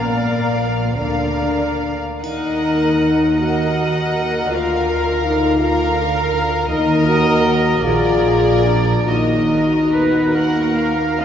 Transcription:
Already playing: A#1 A#2 A#3 A#4 D5 F5
0.98 D2 D3 D4 A#4 D5 F5
2.23 D#2 D#3 D#4 A#4 D#5 F#5, triangle
3.38 F#4 A#4 D#5 F#5
4.51 D2 D3 F4 A#4 F5
5.25 D#4
5.61 F4 A#4 F5
6.69 D#2 D#3 D#4 A#4 D#5
7.07 F#4
7.84 A#1 A#2 F4 G#4 A#4 D5
8.65 D4
9.08 D#2 D#3 D#4 F#4 A#4 D#5
9.92 B3 B4
10.35 A#3 A#4 F#5
10.77 F5
11.18 F4 D#5 F5

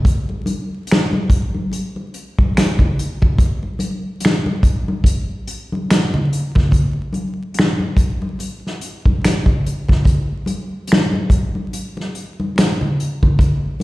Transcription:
0.05 kick, closed hi-hat
0.29 muted conga
0.46 closed hi-hat, high conga
0.87 closed hi-hat
0.91 finger snap, snare
1.13 muted conga, high conga
1.30 kick, closed hi-hat
1.55 high conga
1.72 closed hi-hat, muted conga
1.96 muted conga
2.14 closed hi-hat
2.39 kick, high conga
2.55 finger snap, snare, closed hi-hat, muted conga
2.79 kick, muted conga, low conga
2.99 closed hi-hat
3.22 kick, low conga
3.38 kick, closed hi-hat, muted conga
3.63 muted conga
3.79 closed hi-hat, high conga
4.20 closed hi-hat, muted conga
4.25 finger snap, snare
4.46 muted conga, high conga
4.63 kick, closed hi-hat
4.88 high conga
5.04 kick, closed hi-hat
5.48 closed hi-hat
5.72 high conga
5.91 finger snap, snare, closed hi-hat
6.14 low conga
6.33 closed hi-hat
6.55 kick, snare, low conga
6.71 kick, closed hi-hat, low conga
7.13 closed hi-hat, high conga
7.54 closed hi-hat, muted conga
7.59 finger snap, snare
7.80 high conga
7.97 kick, closed hi-hat
8.22 high conga
8.39 closed hi-hat, muted conga
8.67 snare
8.81 closed hi-hat
9.06 kick, high conga
9.21 finger snap, snare, closed hi-hat, muted conga
9.46 kick, muted conga, low conga
9.66 closed hi-hat
9.88 kick, snare, low conga
10.05 kick, closed hi-hat, low conga
10.46 closed hi-hat, high conga
10.87 closed hi-hat, muted conga
10.92 finger snap, snare
11.13 high conga
11.30 kick, closed hi-hat
11.55 high conga
11.73 closed hi-hat
11.97 snare, muted conga
12.15 closed hi-hat
12.40 high conga
12.56 finger snap, snare, closed hi-hat, muted conga
12.81 muted conga, low conga
13.00 closed hi-hat
13.23 kick, low conga
13.39 kick, closed hi-hat, muted conga, low conga
13.80 high conga

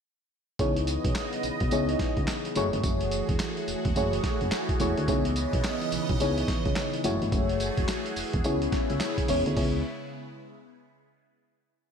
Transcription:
0.59 C#2 C#3 E3 B3 D#4 E4 G#4 C#5 D#5, kick, closed hi-hat, tambourine
0.76 closed hi-hat
0.87 closed hi-hat, tambourine
1.05 B1, kick, closed hi-hat
1.15 snare, clap, closed hi-hat, tambourine
1.33 closed hi-hat
1.43 B1, closed hi-hat, tambourine
1.60 B1, kick, closed hi-hat
1.71 C#2 B3 D#4 E4 G#4 C#5, closed hi-hat, tambourine
1.89 closed hi-hat
1.99 kick, snare, closed hi-hat
2.17 C#2, kick, closed hi-hat
2.27 snare, clap, closed hi-hat, tambourine
2.45 closed hi-hat
2.55 F#1 A3 E4 F#4 G#4 C#5, closed hi-hat, tambourine
2.73 G1, closed hi-hat
2.83 F#1, kick, closed hi-hat, tambourine
3.01 closed hi-hat
3.11 closed hi-hat, tambourine
3.29 E1, kick, closed hi-hat
3.39 snare, clap, closed hi-hat, tambourine
3.57 closed hi-hat
3.68 E1, closed hi-hat, tambourine
3.85 E1, kick, closed hi-hat
3.96 F#1 A3 E4 F#4 G#4 C#5, closed hi-hat, tambourine
4.13 closed hi-hat
4.24 kick, snare, closed hi-hat
4.41 F#1, closed hi-hat
4.52 snare, clap, closed hi-hat, tambourine
4.69 kick, closed hi-hat
4.80 E1 A3 E4 F#4 G#4 C#5, closed hi-hat, tambourine
4.97 D2, closed hi-hat
5.08 C#2 C#3 B3 D#4 E4 G#4 C#5 D#5, kick, closed hi-hat, tambourine
5.25 closed hi-hat
5.36 closed hi-hat, tambourine
5.53 B1, kick, closed hi-hat
5.64 snare, clap, closed hi-hat, tambourine
5.82 closed hi-hat
5.92 B1, closed hi-hat, tambourine
6.09 B1, kick, closed hi-hat
6.20 C#2 B3 D#4 E4 G#4 C#5, closed hi-hat, tambourine
6.38 closed hi-hat
6.48 kick, snare, closed hi-hat
6.65 C#2, kick, closed hi-hat
6.76 snare, clap, closed hi-hat, tambourine
6.94 closed hi-hat
7.04 F#1 A3 E4 F#4 G#4 C#5, closed hi-hat, tambourine
7.22 G1, closed hi-hat
7.32 F#1, kick, closed hi-hat, tambourine
7.49 closed hi-hat
7.60 closed hi-hat, tambourine
7.77 E1, kick, closed hi-hat
7.88 snare, clap, closed hi-hat, tambourine
8.06 closed hi-hat
8.16 E1, open hi-hat, tambourine
8.33 E1, kick, closed hi-hat
8.44 C#2 C#3 B3 C#4 E4 G#4 C#5, closed hi-hat, tambourine
8.62 closed hi-hat
8.72 kick, snare, closed hi-hat
8.90 C#2, closed hi-hat
9.00 snare, clap, closed hi-hat, tambourine
9.18 kick, closed hi-hat
9.28 E1 B3 C#4 E4 G#4 C#5, open hi-hat, tambourine
9.46 D2, closed hi-hat
9.56 C#2 C#3 G#3 B3 E4 G#4 C#5, kick, open hi-hat

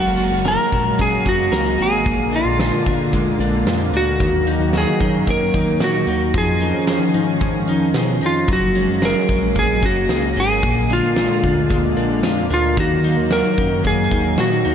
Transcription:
Already playing: F#1 F#3 G#3 A#3 F#4 A#4
0.18 F#4, closed hi-hat
0.31 F#1
0.45 A#4, snare, closed hi-hat
0.72 A#1 F#4, kick, closed hi-hat
0.98 C#4 G#4, kick, closed hi-hat
1.25 F#1 F#4, kick, closed hi-hat
1.52 C#2 A#4, snare, closed hi-hat
1.78 G#1 F#4, closed hi-hat
1.82 G#4
2.05 A#1 A#2 D3, kick, closed hi-hat
2.32 D4 F4, closed hi-hat
2.45 A#1
2.59 F4, snare, closed hi-hat
2.86 D2 D4, kick, closed hi-hat
3.13 G#3, kick, closed hi-hat
3.39 A#1 D4, closed hi-hat
3.65 F2, snare, closed hi-hat
3.93 D2 D4 F#4, closed hi-hat
4.20 D#2 D#3 F#3, kick, closed hi-hat
4.47 D#4, closed hi-hat
4.60 D#2
4.73 F#4, snare, closed hi-hat
4.77 G#4
5.00 F#2 D#4, kick, closed hi-hat
5.27 A#3 A#4, kick, closed hi-hat
5.54 D#2 D#4, kick, closed hi-hat
5.80 A#2 F#4, snare, closed hi-hat
6.07 D#2 D#4, closed hi-hat
6.34 F2 D#3 F3 C#4 G#4, kick, closed hi-hat
6.61 D#4, closed hi-hat
6.74 F2
6.87 G#4, snare, closed hi-hat
7.14 G#2 D#4, closed hi-hat
7.41 C#4, kick, closed hi-hat
7.67 F2 D#4, closed hi-hat
7.94 B2 G#4, snare, closed hi-hat
8.21 F2 D#4, closed hi-hat
8.26 F4
8.48 F#1 F#3 G#3 A#3, kick, closed hi-hat
8.53 F#4
8.75 C#4, closed hi-hat
8.89 F#1
9.02 G#4 A#4, snare, closed hi-hat
9.29 A#1 C#4, kick, closed hi-hat
9.55 A#3 G#4, kick, closed hi-hat
9.83 F#1 C#4 F#4, kick, closed hi-hat
10.09 C#2 G#4, snare, closed hi-hat
10.36 G#1 C#4 G#4, closed hi-hat
10.63 A#1 A#2 D3 G#3, kick, closed hi-hat
10.90 D4 F4, closed hi-hat
11.03 A#1
11.16 F4, snare, closed hi-hat
11.43 D2 D4, kick, closed hi-hat
11.70 G#3, kick, closed hi-hat
11.97 A#1 D4, closed hi-hat
12.23 F2 F4, snare, closed hi-hat
12.50 D2 D4 F4, closed hi-hat
12.77 D#2 D#3 F#3 F#4, kick, closed hi-hat
13.04 D#4, closed hi-hat
13.17 D#2
13.31 F#4 A#4, snare, closed hi-hat
13.58 F#2 D#4, kick, closed hi-hat
13.84 A#3 G#4, kick, closed hi-hat
14.11 D#2 D#4, kick, closed hi-hat
14.38 A#2 F#4, snare, closed hi-hat
14.65 D#2 D#4, closed hi-hat

